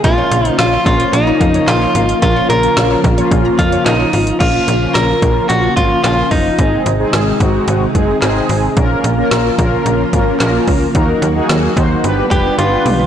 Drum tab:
CC |----------------|----------------|x---------------|----------------|
HH |x-xxx-xxx-xxx-xx|x-xxx-xxx-xxx-ox|x-x-x-x-x-x-x-o-|x-x-x-x-x-x-x-o-|
CP |------------x---|------------x---|------------x---|------------x---|
SD |----o-------o---|----o-------o---|----o-------o---|----o-------o---|
T1 |----------------|----------------|----------------|----------------|
T2 |----------------|----------------|----------------|----------------|
FT |----------------|----------------|----------------|----------------|
BD |o-----o---o-----|o-----o-o-o-----|o-----o---o---o-|o-----o---o-----|

CC |----------------|----------------|
HH |x-x-x-x-x-x-x-o-|x-x-x-x-x-x-x-o-|
CP |------------x---|----------------|
SD |----o-------o---|----o-----------|
T1 |----------------|------------o---|
T2 |----------------|--------------o-|
FT |----------------|---------------o|
BD |o-----o---o---o-|o-----o---o-----|